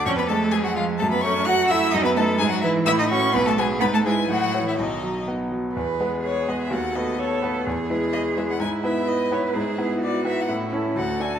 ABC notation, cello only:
X:1
M:2/4
L:1/16
Q:1/4=127
K:F#m
V:1 name="Cello"
C B, A,2 G, F, ^E,2 | A, B, C2 F2 E2 | [K:E] D B, A,2 G, F, E,2 | E D C2 B, A, G,2 |
B, A, G,2 F,3 E, | D,4 z4 | B4 G4 | F4 A4 |
G8 | E4 B4 | [K:A] G4 F4 | E4 F4 |]